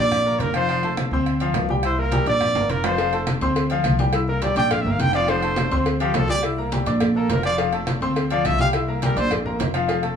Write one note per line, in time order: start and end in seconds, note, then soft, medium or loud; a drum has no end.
0.00 0.37 A#1 loud
0.00 0.21 D4 medium
0.00 0.21 D5 medium
0.00 0.43 D5 loud
0.00 0.21 D6 medium
0.11 high conga soft
0.11 low conga medium
0.11 low agogo loud
0.26 0.50 A#3 medium
0.26 0.50 A#4 medium
0.26 0.50 A#5 medium
0.26 high conga soft
0.40 1.06 F1 medium
0.40 0.55 A#4 medium
0.40 high conga medium
0.40 low agogo medium
0.54 0.66 F3 medium
0.54 0.66 F4 medium
0.54 0.95 C5 loud
0.54 0.67 F5 medium
0.54 high conga soft
0.54 low agogo loud
0.68 0.81 F3 medium
0.68 0.81 F4 medium
0.68 0.81 F5 medium
0.68 high conga soft
0.68 low agogo medium
0.83 1.07 A3 medium
0.83 1.07 A4 medium
0.83 1.07 A5 medium
0.83 high conga soft
0.83 low agogo medium
0.97 high conga loud
0.97 low agogo loud
1.11 1.51 D2 medium
1.11 1.36 C4 medium
1.11 1.36 C5 medium
1.11 1.36 C6 medium
1.11 high conga soft
1.26 high conga soft
1.26 low agogo medium
1.40 1.64 F3 medium
1.40 1.65 F4 medium
1.40 1.65 F5 medium
1.40 high conga soft
1.40 low agogo medium
1.54 2.21 C2 medium
1.54 high conga medium
1.54 low timbale medium
1.54 low agogo loud
1.69 1.81 G3 medium
1.69 1.81 G4 medium
1.69 1.82 G5 medium
1.69 high conga medium
1.83 1.96 E4 medium
1.83 2.01 C5 medium
1.83 1.96 E5 medium
1.83 1.96 E6 medium
1.83 high conga soft
1.83 low agogo loud
1.98 2.10 A#3 medium
1.98 2.10 A#4 medium
1.98 2.28 A#4 medium
1.98 2.11 A#5 medium
1.98 high conga soft
2.12 2.24 G3 medium
2.12 2.24 G4 medium
2.12 2.25 G5 medium
2.12 high conga loud
2.12 low agogo medium
2.26 2.53 A#1 medium
2.26 2.50 D4 medium
2.26 2.51 D5 medium
2.26 2.72 D5 loud
2.26 2.51 D6 medium
2.26 high conga soft
2.26 low agogo medium
2.41 high conga soft
2.41 low conga medium
2.41 low agogo loud
2.55 2.68 G1 medium
2.55 2.79 A#3 medium
2.55 2.79 A#4 medium
2.55 2.79 A#5 medium
2.55 high conga soft
2.55 high timbale loud
2.69 3.36 F1 medium
2.69 2.87 A#4 medium
2.69 high conga medium
2.69 low agogo medium
2.84 2.96 F3 medium
2.84 2.96 F4 medium
2.84 3.28 C5 loud
2.84 2.96 F5 medium
2.84 high conga soft
2.84 low timbale medium
2.84 low agogo loud
2.98 3.10 F3 medium
2.98 3.11 F4 medium
2.98 3.11 F5 medium
2.98 cowbell loud
2.98 high conga soft
2.98 low agogo loud
3.13 3.36 A3 medium
3.13 3.37 A4 medium
3.13 3.37 A5 medium
3.13 high conga soft
3.13 low agogo medium
3.27 cowbell medium
3.27 high conga loud
3.27 low agogo loud
3.41 3.82 D2 medium
3.41 3.65 C4 medium
3.41 3.66 C5 medium
3.41 3.66 C6 medium
3.41 cowbell medium
3.41 high conga soft
3.56 cowbell loud
3.56 high conga soft
3.56 low agogo loud
3.70 3.94 F3 loud
3.70 3.95 F4 medium
3.70 3.95 F5 loud
3.70 high conga soft
3.70 low agogo medium
3.84 4.51 C2 loud
3.84 cowbell medium
3.84 high conga medium
3.84 low agogo loud
3.99 4.11 G3 medium
3.99 4.11 G4 medium
3.99 4.11 G5 medium
3.99 cowbell medium
3.99 high conga medium
4.13 4.25 E4 medium
4.13 4.26 E5 medium
4.13 4.26 E6 medium
4.13 cowbell loud
4.13 high conga soft
4.13 low agogo loud
4.28 4.40 A#3 medium
4.28 4.45 A#4 medium
4.28 4.40 A#4 medium
4.28 4.40 A#5 medium
4.28 high conga soft
4.42 4.54 G3 medium
4.42 4.54 G4 medium
4.42 4.57 D5 medium
4.42 4.54 G5 medium
4.42 cowbell medium
4.42 high conga medium
4.42 low agogo medium
4.55 4.83 A#1 medium
4.55 4.80 D4 medium
4.55 4.81 D5 medium
4.55 4.73 G5 loud
4.55 4.81 D6 medium
4.55 cowbell medium
4.55 high conga soft
4.55 low agogo medium
4.71 4.82 F5 medium
4.71 cowbell loud
4.71 high conga soft
4.71 low conga medium
4.71 low agogo loud
4.81 4.98 G1 medium
4.81 4.92 E5 medium
4.86 5.09 A#3 medium
4.86 5.09 A#4 medium
4.86 5.10 A#5 medium
4.86 high conga soft
4.91 5.02 F5 medium
4.99 5.66 F1 loud
4.99 5.14 G5 loud
4.99 cowbell medium
4.99 high conga medium
4.99 low agogo medium
5.13 5.26 F3 medium
5.13 5.26 F4 medium
5.13 5.31 D5 loud
5.13 5.26 F5 medium
5.13 high conga soft
5.13 low agogo loud
5.28 5.40 F3 medium
5.28 5.40 F4 medium
5.28 5.86 C5 medium
5.28 5.40 F5 medium
5.28 cowbell loud
5.28 high conga soft
5.28 low agogo medium
5.43 5.66 A3 medium
5.43 5.67 A4 medium
5.43 5.67 A5 medium
5.43 high conga soft
5.43 low agogo medium
5.56 cowbell medium
5.56 high conga loud
5.56 low agogo loud
5.71 6.11 D2 medium
5.71 5.95 C4 medium
5.71 5.95 C5 medium
5.71 5.95 C6 medium
5.71 cowbell medium
5.71 high conga soft
5.85 cowbell loud
5.85 high conga soft
5.85 low agogo medium
6.00 6.24 F3 loud
6.00 6.24 F4 medium
6.00 6.16 G4 medium
6.00 6.24 F5 loud
6.00 high conga soft
6.00 low agogo medium
6.14 6.81 C2 loud
6.14 6.29 A4 medium
6.14 cowbell medium
6.14 high conga medium
6.14 low timbale medium
6.14 low agogo loud
6.29 6.41 G3 medium
6.29 6.41 G4 medium
6.29 6.43 D5 loud
6.29 6.41 G5 medium
6.29 cowbell medium
6.29 high conga medium
6.43 6.55 E4 medium
6.43 6.56 E5 medium
6.43 6.56 E6 medium
6.43 cowbell loud
6.43 low agogo loud
6.58 6.70 A#3 medium
6.58 6.70 A#4 medium
6.58 6.70 A#5 medium
6.58 high conga soft
6.72 6.84 G3 medium
6.72 6.84 G4 medium
6.72 6.85 G5 medium
6.72 cowbell medium
6.72 high conga loud
6.72 low agogo medium
6.86 7.26 A#1 medium
6.86 7.10 D4 medium
6.86 7.10 D5 medium
6.86 7.10 D6 medium
6.86 cowbell medium
6.86 high conga soft
6.86 low agogo medium
7.00 cowbell loud
7.00 high conga soft
7.00 low conga medium
7.00 low agogo loud
7.15 7.39 A#3 medium
7.15 7.32 A4 medium
7.15 7.39 A#4 medium
7.15 7.40 A#5 medium
7.15 high conga soft
7.29 7.96 F1 medium
7.29 7.44 A#4 medium
7.29 cowbell medium
7.29 high conga medium
7.29 low timbale medium
7.29 low agogo medium
7.43 7.56 F3 medium
7.43 7.56 F4 medium
7.43 7.58 D5 loud
7.43 7.57 F5 medium
7.43 high conga soft
7.43 low agogo loud
7.58 7.70 F3 medium
7.58 7.70 F4 medium
7.58 7.71 F5 medium
7.58 cowbell loud
7.58 high conga soft
7.58 low agogo loud
7.73 7.96 A3 medium
7.73 7.97 A4 medium
7.73 7.97 A5 medium
7.73 high conga soft
7.73 low agogo medium
7.87 cowbell medium
7.87 high conga loud
7.87 low agogo loud
8.01 8.41 D2 medium
8.01 8.25 C4 medium
8.01 8.25 C5 medium
8.01 8.26 C6 medium
8.01 cowbell medium
8.01 high conga soft
8.16 cowbell loud
8.16 high conga soft
8.16 low agogo medium
8.30 8.54 F3 medium
8.30 8.55 F4 medium
8.30 8.48 D5 medium
8.30 8.55 F5 medium
8.30 high conga soft
8.30 low agogo medium
8.45 9.11 C2 medium
8.45 8.60 E5 loud
8.45 cowbell medium
8.45 high conga medium
8.45 low agogo loud
8.59 8.71 G3 medium
8.59 8.72 G4 medium
8.59 8.69 F5 loud
8.59 8.72 G5 medium
8.59 cowbell medium
8.59 high conga medium
8.73 8.86 E4 medium
8.73 8.86 E5 medium
8.73 8.86 E6 medium
8.73 cowbell loud
8.73 high conga soft
8.73 low agogo loud
8.88 9.00 A#3 medium
8.88 9.00 A#4 medium
8.88 9.00 A#5 medium
8.88 high conga soft
9.02 9.14 G3 medium
9.02 9.15 G4 medium
9.02 9.20 A#4 medium
9.02 9.15 G5 medium
9.02 cowbell medium
9.02 high conga loud
9.02 low agogo medium
9.16 9.56 A#1 loud
9.16 9.40 D4 medium
9.16 9.32 C5 loud
9.16 9.40 D5 medium
9.16 9.40 D6 medium
9.16 cowbell medium
9.16 high conga soft
9.16 low agogo medium
9.31 cowbell loud
9.31 high conga soft
9.31 low conga medium
9.31 low agogo loud
9.45 9.69 A#3 medium
9.45 9.69 A#4 medium
9.45 9.69 A#5 medium
9.45 high conga soft
9.45 low conga medium
9.59 10.16 F1 loud
9.59 cowbell medium
9.59 high conga medium
9.59 low timbale medium
9.59 low agogo medium
9.74 9.86 F3 medium
9.74 9.86 F4 loud
9.74 9.86 F5 medium
9.74 high conga soft
9.74 low agogo loud
9.88 10.00 F3 medium
9.88 10.00 F4 medium
9.88 10.01 F5 medium
9.88 cowbell loud
9.88 high conga soft
9.88 low agogo medium
10.02 10.16 A3 medium
10.02 10.16 A4 medium
10.02 10.16 A5 medium
10.02 high conga soft
10.02 low agogo medium